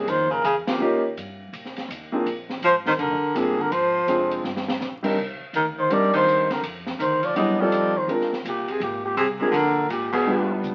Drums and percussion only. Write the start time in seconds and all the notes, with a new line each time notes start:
0.08 ride
0.45 hi-hat pedal, ride
0.67 snare, ride
1.17 hi-hat pedal, ride
1.53 ride
1.65 snare
1.76 snare, ride
1.90 hi-hat pedal, ride
2.26 ride
2.50 snare
2.63 hi-hat pedal, ride
2.86 snare
2.99 ride
3.35 hi-hat pedal, ride
3.72 ride
4.08 hi-hat pedal, ride
4.31 ride
4.44 snare
4.56 snare
4.68 snare
4.81 snare, hi-hat pedal
5.04 kick, crash
5.54 hi-hat pedal, ride
5.90 ride
6.13 kick, crash
6.28 hi-hat pedal
6.50 snare, ride
6.63 ride
6.86 snare
7.00 hi-hat pedal, ride
7.23 ride
7.36 ride
7.72 hi-hat pedal, ride
8.09 ride
8.21 snare
8.33 snare
8.45 hi-hat pedal, ride
8.68 ride
8.81 ride
9.17 hi-hat pedal, ride
9.54 ride
9.90 hi-hat pedal, ride
10.13 kick, crash
10.63 hi-hat pedal, mid tom